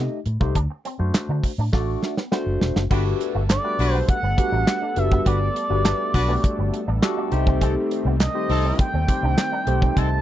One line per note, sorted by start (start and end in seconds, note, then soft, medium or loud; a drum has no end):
0.00 0.18 A3 medium
0.00 0.19 D#4 medium
0.00 0.19 G4 medium
0.00 0.19 D#5 loud
0.26 0.37 A2 medium
0.26 muted clean electric guitar stroke soft
0.26 closed hi-hat medium
0.40 0.52 C2 medium
0.40 0.55 A3 medium
0.40 0.50 A3 medium
0.40 0.55 D#4 medium
0.40 0.55 G4 medium
0.40 0.56 C5 medium
0.40 kick loud
0.55 0.66 D2 loud
0.55 0.65 D4 medium
0.55 kick medium
0.55 closed hi-hat medium
0.70 muted clean electric guitar stroke soft
0.85 0.94 C4 medium
0.85 closed hi-hat medium
0.99 1.10 F#2 medium
0.99 1.51 A3 medium
0.99 1.51 D4 medium
0.99 1.51 F#4 medium
0.99 1.51 C5 medium
1.14 muted fingered electric bass stroke soft
1.14 snare loud
1.14 clap loud
1.14 closed hi-hat loud
1.29 1.40 D3 medium
1.29 1.39 D4 medium
1.44 muted clean electric guitar stroke soft
1.44 kick medium
1.44 open hi-hat medium
1.58 1.69 A2 medium
1.58 1.68 D4 medium
1.73 1.95 A1 medium
1.73 2.14 A3 loud
1.73 1.83 A3 medium
1.73 2.14 D4 medium
1.73 2.14 F#4 medium
1.73 2.14 D5 loud
1.73 kick loud
1.73 snare medium
2.03 muted clean electric guitar stroke soft
2.03 snare medium
2.17 2.26 B3 medium
2.17 snare medium
2.31 2.83 A3 medium
2.31 2.41 B3 medium
2.31 2.83 D4 medium
2.31 2.83 F#4 medium
2.31 2.83 C5 loud
2.31 snare medium
2.46 2.57 F#1 medium
2.61 2.72 E1 medium
2.61 muted clean electric guitar stroke soft
2.61 snare loud
2.76 2.87 F#1 medium
2.76 2.85 A3 medium
2.76 snare medium
2.90 3.12 G1 loud
2.90 7.28 G3 medium
2.90 3.42 A3 medium
2.90 10.22 A3 medium
2.90 3.00 B3 medium
2.90 7.28 B3 medium
2.90 3.42 D4 medium
2.90 3.03 D4 medium
2.90 3.42 F#4 medium
2.90 3.03 F#4 medium
2.90 3.42 G4 medium
2.90 7.28 A4 medium
2.90 3.03 B4 medium
2.90 3.42 B4 loud
2.90 kick medium
2.90 crash loud
3.20 muted clean electric guitar stroke soft
3.20 closed hi-hat medium
3.34 3.56 G1 medium
3.34 3.44 A3 medium
3.49 3.59 D4 medium
3.49 3.93 D5 loud
3.49 snare loud
3.49 clap loud
3.49 closed hi-hat loud
3.64 4.16 A3 medium
3.64 4.16 D4 medium
3.64 4.16 F#4 medium
3.64 4.16 G4 medium
3.64 4.16 B4 medium
3.79 4.00 B1 medium
3.79 3.98 D4 loud
3.79 3.98 F#4 loud
3.79 3.98 B4 loud
3.79 muted clean electric guitar stroke soft
3.79 open hi-hat medium
3.93 4.03 B3 medium
3.93 4.05 C5 loud
4.08 5.00 F#5 loud
4.08 kick loud
4.08 closed hi-hat medium
4.23 4.34 G1 medium
4.23 4.32 B3 medium
4.37 4.79 A3 medium
4.37 4.79 D4 medium
4.37 4.79 F#4 medium
4.37 4.79 G4 medium
4.37 4.79 B4 medium
4.37 muted clean electric guitar stroke soft
4.37 kick loud
4.37 closed hi-hat medium
4.52 4.63 A1 medium
4.52 4.62 D4 medium
4.67 snare loud
4.67 clap loud
4.67 closed hi-hat medium
4.82 4.91 D4 medium
4.96 5.18 F#1 medium
4.96 5.48 A3 medium
4.96 5.48 D4 medium
4.96 5.48 F#4 medium
4.96 5.48 G4 medium
4.96 5.48 B4 medium
4.96 5.27 E5 loud
4.96 muted clean electric guitar stroke soft
4.96 closed hi-hat medium
5.11 5.21 B3 medium
5.11 kick loud
5.25 5.48 G1 loud
5.25 5.35 B3 medium
5.25 5.38 D4 medium
5.25 5.38 F#4 medium
5.25 5.38 B4 medium
5.25 7.29 D5 loud
5.25 kick loud
5.25 closed hi-hat medium
5.55 muted clean electric guitar stroke soft
5.55 closed hi-hat medium
5.70 5.92 G1 medium
5.70 6.11 A3 medium
5.70 5.79 A3 medium
5.70 6.11 D4 medium
5.70 6.11 F#4 medium
5.70 6.11 G4 medium
5.70 6.12 B4 medium
5.84 5.94 D4 medium
5.84 snare loud
5.84 clap loud
5.84 closed hi-hat loud
6.14 6.36 B1 medium
6.14 6.33 D4 loud
6.14 6.33 F#4 loud
6.14 6.33 B4 loud
6.14 muted clean electric guitar stroke soft
6.14 kick medium
6.14 open hi-hat medium
6.28 6.80 A3 medium
6.28 6.38 B3 medium
6.28 6.80 D4 medium
6.28 6.80 F#4 medium
6.28 6.80 G4 medium
6.28 6.81 D5 loud
6.44 kick loud
6.44 closed hi-hat medium
6.58 6.69 G1 medium
6.58 6.68 B3 medium
6.73 muted clean electric guitar stroke soft
6.73 closed hi-hat medium
6.88 6.99 A1 medium
6.88 6.97 D4 medium
7.02 7.30 A3 loud
7.02 7.32 D4 loud
7.02 7.32 F#4 loud
7.02 7.31 G4 loud
7.02 7.32 A4 loud
7.02 snare loud
7.02 clap loud
7.02 closed hi-hat medium
7.17 7.26 D4 medium
7.32 7.75 C2 loud
7.32 10.22 D#3 medium
7.32 10.22 G3 medium
7.32 8.14 A3 loud
7.32 8.14 C4 medium
7.32 10.22 C4 medium
7.32 8.14 D#4 medium
7.32 8.14 G4 medium
7.32 8.15 C5 loud
7.32 muted clean electric guitar stroke soft
7.32 closed hi-hat medium
7.46 7.56 C4 medium
7.46 kick loud
7.61 7.74 C4 medium
7.61 7.71 C4 medium
7.61 7.74 D#4 medium
7.61 7.74 A4 medium
7.61 kick medium
7.61 closed hi-hat medium
7.91 muted clean electric guitar stroke soft
7.91 closed hi-hat medium
8.05 8.27 C2 loud
8.05 8.15 B3 medium
8.20 8.30 D4 medium
8.20 8.76 D#5 medium
8.20 snare loud
8.20 clap loud
8.20 closed hi-hat loud
8.34 8.86 A3 medium
8.34 8.86 C4 medium
8.34 8.86 D#4 medium
8.34 8.86 G4 medium
8.34 8.86 C5 medium
8.49 8.71 C2 loud
8.49 8.87 C4 loud
8.49 8.87 D#4 loud
8.49 8.87 A4 loud
8.49 muted clean electric guitar stroke soft
8.49 open hi-hat medium
8.64 8.74 C4 medium
8.79 9.99 G5 loud
8.79 kick loud
8.79 closed hi-hat medium
8.94 9.04 D#2 medium
8.94 9.03 C4 medium
9.08 9.49 A3 medium
9.08 9.49 C4 medium
9.08 9.50 D#4 medium
9.08 9.50 G4 medium
9.08 9.50 C5 medium
9.08 muted clean electric guitar stroke soft
9.08 kick loud
9.08 closed hi-hat medium
9.23 9.34 C2 medium
9.23 9.32 D4 medium
9.38 snare loud
9.38 clap loud
9.38 closed hi-hat medium
9.52 9.62 D4 medium
9.67 9.88 B1 loud
9.67 10.19 A3 medium
9.67 10.19 C4 medium
9.67 10.19 D#4 medium
9.67 10.19 G4 medium
9.67 10.19 C5 medium
9.67 muted clean electric guitar stroke soft
9.67 closed hi-hat medium
9.82 9.91 C4 medium
9.82 kick medium
9.96 10.18 C2 loud
9.96 10.06 C4 medium
9.96 10.09 C4 medium
9.96 10.09 D#4 medium
9.96 10.09 A4 medium
9.96 10.22 A5 loud
9.96 kick loud
9.96 closed hi-hat medium